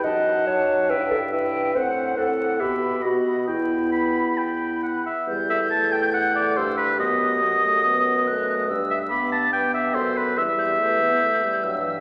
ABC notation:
X:1
M:4/4
L:1/8
Q:1/4=141
K:Em
V:1 name="Flute"
a4 g2 g2 | f2 f2 b2 b2 | b6- b z | g'6 e'2 |
^d' d'4- d' f'2 | e'2 d'4 e'2 | e' g' g'4 e'2 |]
V:2 name="Oboe"
f4 e2 e2 | f2 f2 e2 ^d2 | g2 b2 g2 f e | z e a g f d c B |
^d8 | z e b a g e c B | e8 |]
V:3 name="Clarinet"
^d2 ^c2 B A B2 | c2 A2 G2 F2 | E6- E z | B A4- A G2- |
G4 B4 | B6 A2 | G2 B6 |]
V:4 name="French horn"
^D4 E2 E2 | C2 C2 B,2 B,2 | B,6- B, z | G,2 A,6 |
B,2 F, A, B,2 A,2 | G,2 B,2 B,4 | G,2 A, B, A, G, F, E, |]
V:5 name="Bassoon" clef=bass
F,,4 G,,4 | A,,4 B,,2 B,,2 | E,,6- E,, z | E,,6 G,,2 |
F,,8 | G,,6 F,,2 | E,,6 G,,2 |]